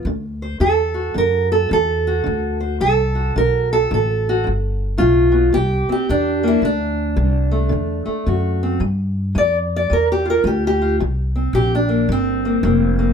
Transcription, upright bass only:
X:1
M:4/4
L:1/8
Q:"Swing" 1/4=110
K:Ddor
V:1 name="Upright bass" clef=bass
D,,2 E,,2 ^F,,2 E,,2 | D,,2 C,,2 B,,,2 A,,,2 | G,,,2 B,,,2 C,, z E,,2 | D,,2 C,,2 E,, z ^F,,2 |
G,,2 F,,2 E,,2 D,,2 | C,,2 _B,,,2 G,,,2 F,,,2 |]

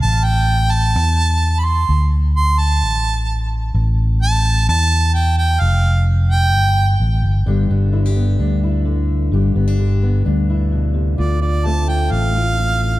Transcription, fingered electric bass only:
X:1
M:4/4
L:1/8
Q:1/4=129
K:Gmix
V:1 name="Fingered electric bass" clef=bass
A,,,4 E,,4 | D,,4 A,,,4 | A,,,4 E,,4 | F,,,4 G,,,2 A,,, G,,, |
G,,, G,,,3 D,,4 | G,,, G,,,3 D,,4 | D,,4 A,,,4 |]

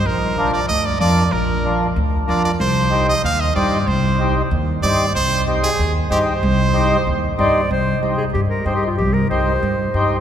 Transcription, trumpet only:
X:1
M:4/4
L:1/8
Q:1/4=188
K:Cm
V:1 name="Trumpet"
B3 d e d d2 | B3 z3 d d | c3 e f e d2 | c3 z3 d2 |
c2 z A2 z G c- | c6 z2 | z8 | z8 |]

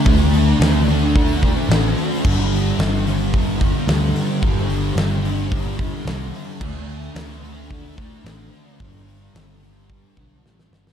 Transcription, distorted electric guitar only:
X:1
M:4/4
L:1/8
Q:1/4=110
K:Dmix
V:1 name="Distorted electric guitar" clef=bass
[D,A,D]2 [D,A,D] [A,D]2 [A,D] [D,A,D]2 | [G,,D,G,]2 [G,,D,G,] [D,G,]2 [D,G,] [G,,D,G,]2 | [G,,D,G,]2 [G,,D,G,] [D,G,]2 [D,G,] [G,,D,G,]2 | [D,A,D]2 [D,A,D] [A,D]2 [A,D] [D,A,D]2 |
[G,,D,G,]2 [G,,D,G,] [D,G,]2 [D,G,] [G,,D,G,]2 |]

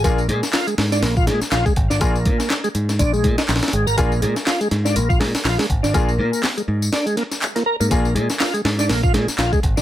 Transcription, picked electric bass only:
X:1
M:4/4
L:1/16
Q:"Swing 16ths" 1/4=122
K:Cphr
V:1 name="Picked electric bass" clef=bass
B,,,2 B,, z3 A,,2 B,,,2 B,, z B,,, z A,,, A,,, | B,,,2 B,, z3 A,,2 B,,,2 B,, z B,,, z A,,, A,,, | B,,,2 B,, z3 A,,2 B,,,2 B,, z B,,, z A,,, A,,, | B,,,2 B,, z3 A,,2 z6 z A,, |
B,,,2 B,, z3 A,,2 B,,,2 B,, z B,,, z A,,, A,,, |]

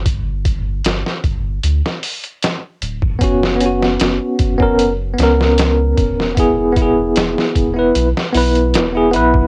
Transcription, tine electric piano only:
X:1
M:4/4
L:1/16
Q:1/4=76
K:F#phr
V:1 name="Tine electric piano"
z16 | [B,CF]2 [B,CF]4- [B,CF] [B,C^A]2 z [B,CA]6 | [B,E^G]2 [B,EG]4- [B,EG] [B,EB]2 z [B,EB]3 [B,EG] [B,EB]2 |]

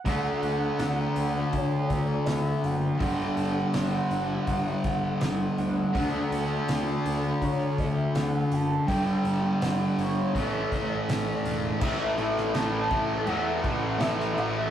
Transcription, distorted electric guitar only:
X:1
M:4/4
L:1/8
Q:1/4=82
K:D
V:1 name="Distorted electric guitar" clef=bass
[D,A,D]8 | [G,,D,G,]8 | [D,A,D]8 | [G,,D,G,]4 [A,,E,A,]4 |
[A,,E,A,] [E,A,] [A,,E,A,] [E,A,] [A,,E,A,] [E,A,] [A,,E,A,] [E,A,] |]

